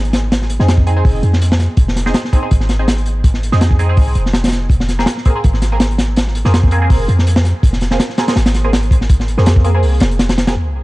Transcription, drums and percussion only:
0.05 closed hi-hat soft
0.13 snare loud
0.13 closed hi-hat medium
0.32 snare loud
0.32 closed hi-hat medium
0.42 snare soft
0.50 closed hi-hat medium
0.60 snare soft
0.68 snare loud
0.68 closed hi-hat medium
0.77 kick medium
0.87 closed hi-hat medium
1.05 kick loud
1.05 open hi-hat medium
1.23 closed hi-hat medium
1.33 snare soft
1.42 closed hi-hat medium
1.52 snare loud
1.59 snare medium
1.59 closed hi-hat medium
1.77 kick loud
1.77 closed hi-hat medium
1.88 snare medium
1.96 snare soft
1.96 closed hi-hat medium
2.06 snare soft
2.14 snare loud
2.14 closed hi-hat medium
2.25 snare soft
2.33 kick medium
2.33 closed hi-hat medium
2.51 kick loud
2.51 closed hi-hat medium
2.60 snare soft
2.69 snare medium
2.69 closed hi-hat medium
2.88 snare loud
2.88 closed hi-hat medium
2.98 closed hi-hat soft
3.06 closed hi-hat medium
3.24 kick loud
3.24 closed hi-hat medium
3.34 snare soft
3.43 closed hi-hat medium
3.52 snare soft
3.61 snare loud
3.61 closed hi-hat medium
3.71 kick medium
3.79 closed hi-hat medium
3.97 kick loud
3.97 open hi-hat medium
4.15 closed hi-hat medium
4.26 snare soft
4.33 snare loud
4.33 closed hi-hat medium
4.44 snare medium
4.44 closed hi-hat medium
4.48 snare medium
4.48 closed hi-hat medium
4.52 snare medium
4.52 closed hi-hat medium
4.70 kick loud
4.70 closed hi-hat medium
4.80 snare medium
4.89 snare soft
4.89 closed hi-hat medium
4.99 snare soft
5.06 snare loud
5.06 closed hi-hat medium
5.17 snare soft
5.25 kick medium
5.25 closed hi-hat medium
5.44 kick loud
5.44 closed hi-hat medium
5.54 snare soft
5.62 snare medium
5.62 closed hi-hat medium
5.80 snare loud
5.80 closed hi-hat medium
5.91 closed hi-hat soft
5.98 snare loud
5.98 closed hi-hat medium
6.16 snare loud
6.16 closed hi-hat medium
6.27 snare soft
6.35 closed hi-hat medium
6.45 snare soft
6.54 snare loud
6.54 closed hi-hat medium
6.64 kick medium
6.71 closed hi-hat medium
6.90 kick loud
6.90 open hi-hat medium
7.09 closed hi-hat medium
7.19 snare soft
7.27 closed hi-hat loud
7.36 snare loud
7.44 snare medium
7.44 closed hi-hat medium
7.63 kick loud
7.63 closed hi-hat medium
7.73 snare medium
7.81 snare soft
7.81 closed hi-hat medium
7.91 snare medium
8.00 snare loud
8.00 closed hi-hat medium
8.09 snare soft
8.18 snare loud
8.18 closed hi-hat medium
8.28 snare loud
8.28 closed hi-hat medium
8.36 snare loud
8.36 closed hi-hat medium
8.46 snare loud
8.46 closed hi-hat medium
8.54 snare medium
8.54 closed hi-hat medium
8.73 snare loud
8.73 closed hi-hat medium
8.83 closed hi-hat soft
8.91 kick medium
8.91 closed hi-hat medium
9.01 snare soft
9.09 kick loud
9.09 closed hi-hat medium
9.20 snare soft
9.28 closed hi-hat medium
9.38 snare soft
9.46 snare loud
9.46 closed hi-hat medium
9.56 kick medium
9.64 closed hi-hat medium
9.83 open hi-hat medium
10.00 snare loud
10.00 closed hi-hat medium
10.11 closed hi-hat soft
10.19 snare loud
10.19 closed hi-hat medium
10.29 snare loud
10.29 closed hi-hat medium
10.38 snare loud
10.38 closed hi-hat medium
10.47 snare loud
10.47 closed hi-hat medium

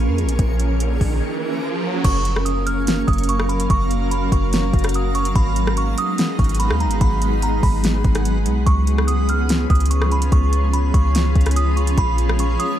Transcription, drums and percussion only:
0.18 closed hi-hat soft
0.29 closed hi-hat medium
0.39 kick loud
0.39 closed hi-hat medium
0.60 closed hi-hat medium
0.80 closed hi-hat medium
1.01 kick medium
1.01 open hi-hat medium
2.04 kick loud
2.04 closed hi-hat medium
2.04 crash loud
2.25 closed hi-hat medium
2.36 cross-stick loud
2.46 closed hi-hat medium
2.67 closed hi-hat medium
2.87 snare loud
2.87 closed hi-hat medium
3.08 kick loud
3.08 closed hi-hat soft
3.13 closed hi-hat soft
3.18 closed hi-hat medium
3.24 closed hi-hat medium
3.29 closed hi-hat medium
3.40 cross-stick loud
3.49 closed hi-hat soft
3.60 closed hi-hat medium
3.70 kick loud
3.70 closed hi-hat medium
3.91 closed hi-hat medium
4.11 closed hi-hat medium
4.32 kick loud
4.32 closed hi-hat medium
4.53 snare loud
4.53 closed hi-hat medium
4.73 kick loud
4.73 closed hi-hat soft
4.79 closed hi-hat soft
4.84 cross-stick loud
4.84 closed hi-hat medium
4.89 closed hi-hat medium
4.94 closed hi-hat medium
5.15 closed hi-hat soft
5.25 closed hi-hat medium
5.36 kick loud
5.36 closed hi-hat medium
5.56 closed hi-hat medium
5.67 cross-stick loud
5.77 closed hi-hat medium
5.98 closed hi-hat medium
6.18 snare loud
6.18 closed hi-hat medium
6.39 kick loud
6.39 closed hi-hat soft
6.44 closed hi-hat soft
6.49 closed hi-hat medium
6.55 closed hi-hat medium
6.60 closed hi-hat medium
6.71 cross-stick loud
6.80 closed hi-hat soft
6.91 closed hi-hat medium
7.01 kick loud
7.01 closed hi-hat medium
7.22 closed hi-hat medium
7.42 closed hi-hat medium
7.63 kick loud
7.63 open hi-hat medium
7.84 snare loud
7.84 closed hi-hat medium
8.04 kick loud
8.04 closed hi-hat soft
8.15 cross-stick loud
8.15 closed hi-hat medium
8.25 closed hi-hat medium
8.46 closed hi-hat medium
8.67 kick loud
8.67 closed hi-hat medium
8.87 closed hi-hat medium
8.98 cross-stick loud
9.08 closed hi-hat medium
9.29 closed hi-hat medium
9.49 snare loud
9.49 closed hi-hat medium
9.70 kick loud
9.70 closed hi-hat soft
9.75 closed hi-hat soft
9.80 closed hi-hat medium
9.86 closed hi-hat medium
9.91 closed hi-hat medium
10.02 cross-stick medium
10.11 closed hi-hat soft
10.22 closed hi-hat medium
10.32 kick loud
10.32 closed hi-hat medium
10.53 closed hi-hat medium
10.73 closed hi-hat medium
10.94 kick loud
10.94 closed hi-hat medium
11.15 snare loud
11.15 closed hi-hat medium
11.36 kick medium
11.36 closed hi-hat soft
11.41 closed hi-hat soft
11.46 cross-stick medium
11.46 closed hi-hat medium
11.51 closed hi-hat medium
11.56 closed hi-hat medium
11.77 closed hi-hat soft
11.87 closed hi-hat medium
11.98 kick loud
11.98 closed hi-hat medium
12.18 closed hi-hat medium
12.29 cross-stick loud
12.39 closed hi-hat medium
12.60 closed hi-hat medium

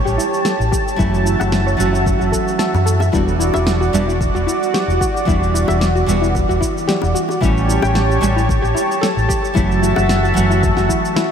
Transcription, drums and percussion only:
0.07 shaker soft
0.20 shaker medium
0.34 shaker soft
0.45 snare medium
0.45 shaker soft
0.61 shaker soft
0.72 kick loud
0.72 shaker medium
0.88 shaker soft
0.99 kick loud
0.99 shaker soft
1.14 shaker soft
1.27 shaker medium
1.41 high bongo medium
1.41 shaker soft
1.52 snare medium
1.52 shaker soft
1.68 shaker soft
1.80 shaker medium
1.95 shaker soft
2.06 kick loud
2.06 shaker soft
2.21 shaker soft
2.33 kick medium
2.33 shaker medium
2.48 shaker soft
2.59 snare loud
2.59 shaker soft
2.74 high bongo medium
2.74 shaker soft
2.87 shaker medium
3.00 high bongo medium
3.00 shaker soft
3.14 kick loud
3.14 shaker soft
3.28 shaker soft
3.41 shaker medium
3.54 high bongo medium
3.54 shaker soft
3.67 snare medium
3.67 shaker soft
3.82 shaker soft
3.95 shaker medium
4.09 shaker soft
4.21 kick loud
4.21 shaker soft
4.36 shaker soft
4.49 shaker medium
4.63 shaker soft
4.74 snare medium
4.74 shaker soft
4.90 shaker soft
5.01 kick loud
5.01 shaker medium
5.17 shaker soft
5.28 kick loud
5.28 shaker soft
5.43 shaker soft
5.56 shaker medium
5.68 high bongo medium
5.68 shaker soft
5.81 snare medium
5.81 shaker soft
5.96 shaker soft
6.09 shaker medium
6.24 shaker soft
6.35 kick loud
6.35 shaker soft
6.51 shaker soft
6.62 kick medium
6.62 shaker medium
6.78 shaker soft
6.89 snare medium
6.89 shaker soft
7.02 high bongo medium
7.02 shaker soft
7.16 shaker medium
7.29 high bongo medium
7.29 shaker soft
7.42 kick loud
7.42 shaker soft
7.57 shaker soft
7.70 shaker medium
7.82 high bongo medium
7.82 shaker soft
7.95 snare medium
7.95 shaker soft
8.11 shaker soft
8.23 shaker medium
8.38 shaker soft
8.49 kick loud
8.49 shaker soft
8.65 shaker soft
8.77 shaker medium
8.92 shaker soft
9.03 snare medium
9.03 shaker soft
9.18 shaker soft
9.30 kick medium
9.30 shaker medium
9.45 shaker soft
9.56 kick loud
9.56 shaker soft
9.72 shaker soft
9.83 shaker medium
9.96 high bongo medium
9.96 shaker soft
10.09 snare medium
10.09 shaker soft
10.25 shaker soft
10.37 shaker medium
10.51 shaker soft
10.63 kick loud
10.63 shaker soft
10.77 snare soft
10.77 shaker soft
10.90 kick medium
10.90 shaker medium
11.05 shaker soft
11.16 snare medium
11.16 shaker soft

